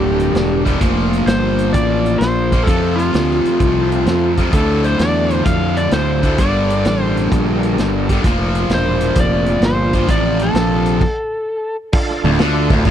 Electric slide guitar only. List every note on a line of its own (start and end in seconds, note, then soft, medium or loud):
0.00 0.62 G4 medium
1.28 1.71 C5 medium
1.73 2.21 D5 medium
2.18 2.67 C5 medium
2.63 2.98 A4 medium
2.96 4.32 F4 medium
4.53 4.85 A4 medium
4.84 5.00 C5 medium
4.99 5.42 D5 medium
5.46 5.78 F5 medium
5.77 5.91 D5 medium
5.92 6.40 C5 medium
6.39 7.02 D5 medium
7.02 7.28 C5 medium
8.74 9.20 C5 loud
9.20 9.66 D5 loud
9.65 10.07 C5 medium
10.11 10.42 D5 loud
10.42 11.76 A4 medium